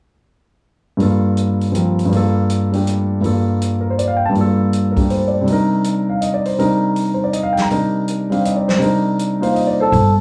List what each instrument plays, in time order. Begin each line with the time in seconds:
0.97 grand piano G2 G3 A#3 F4, open hi-hat
1.02 grand piano A4
1.37 closed hi-hat
1.61 open hi-hat
1.72 grand piano F3 C4 G4 A#4, closed hi-hat
1.99 open hi-hat
2.05 grand piano G2 G3
2.11 grand piano A#3 F4, open hi-hat
2.16 grand piano A4
2.50 closed hi-hat
2.72 grand piano G3 A3 D4 G4, open hi-hat
2.87 closed hi-hat
3.21 grand piano G2 G3 A#3 F4, open hi-hat
3.26 grand piano A4
3.62 closed hi-hat
3.81 grand piano A#4
3.90 grand piano C5
3.99 grand piano D5, closed hi-hat
4.08 grand piano F5
4.17 grand piano G5
4.26 grand piano A5
4.30 grand piano G2 G3
4.35 grand piano A#3 F4, open hi-hat
4.41 grand piano A4
4.73 closed hi-hat
4.91 grand piano A#4
4.97 grand piano G3 A3 D4 G4, kick, open hi-hat
5.10 grand piano C5, open hi-hat
5.28 grand piano D5
5.41 grand piano C3 G3
5.47 grand piano D4 D#4, open hi-hat
5.52 grand piano A#4
5.84 closed hi-hat
6.10 grand piano F5
6.21 grand piano D#5, closed hi-hat
6.34 grand piano D5
6.45 grand piano C5, open hi-hat
6.58 grand piano C3 G3 D4 D#4 A#4, open hi-hat
6.96 open hi-hat
7.14 grand piano C5
7.24 grand piano D5
7.33 grand piano D#5, closed hi-hat
7.43 grand piano F5
7.53 grand piano G5
7.57 snare, open hi-hat
7.62 grand piano A#5
7.70 grand piano C3 G3 D4 D#4 A#4, open hi-hat
8.08 closed hi-hat
8.30 grand piano G3 C4 D4 G4 F5, open hi-hat
8.45 grand piano D#5, closed hi-hat
8.56 grand piano D5
8.68 grand piano C5, snare, open hi-hat
8.78 grand piano C3 G3 D4 D#4, open hi-hat
8.83 grand piano A#4
9.19 closed hi-hat
9.40 grand piano A#3 D#4 F4 C5 F5, open hi-hat
9.55 grand piano D#5, open hi-hat
9.67 grand piano D5
9.80 muted trumpet A4, grand piano C5
9.92 upright bass G1, open hi-hat